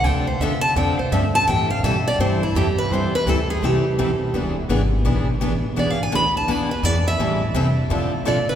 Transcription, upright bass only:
X:1
M:4/4
L:1/8
Q:"Swing" 1/4=168
K:Am
V:1 name="Upright bass" clef=bass
D,,2 E,,2 F,, z G,,2 | A,,2 B,,2 G,,2 F,, z | E,,2 D,,2 C,, z B,,,2 | E,,,2 ^G,,,2 B,,,2 A,,,2 |
B,,, z D,,2 E,,2 F,,2 | A,,2 C,2 D, z B,, z |]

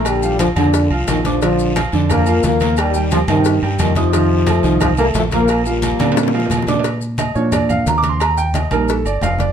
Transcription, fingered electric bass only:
X:1
M:4/4
L:1/8
Q:1/4=177
K:Bb
V:1 name="Fingered electric bass" clef=bass
B,,,3 F,,2 C,, B,,,2- | B,,,3 F,,3 E,,2- | E,,3 G,,2 G,, F,,2- | F,,3 C,,3 B,,,2- |
B,,,3 B,,3 B,,2- | B,,3 B,,3 E,,2- | E,,3 B,,,2 G,,, F,,,2 |]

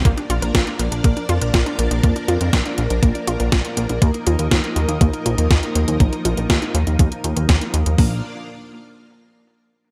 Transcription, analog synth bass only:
X:1
M:4/4
L:1/16
Q:1/4=121
K:Bb
V:1 name="Analog synth bass" clef=bass
B,,, z B,,, B,,, B,,, z B,,, B,,, B,,, z F,, B,,, B,,, z B,,, B,,, | F,, z F,, F,, B,,, z B,,, B,,, B,,, z B,,, B,,, B,,, z B,,, B,,, | E,, z E,, E,, E,, z E,, E,, E,, z B,,, E,, E,, z E,, E,, | B,,, z B,,, B,,, E,, z E,, E,, E,, z E,, E,, E,, z E,, E,, |
B,,,2 z12 z2 |]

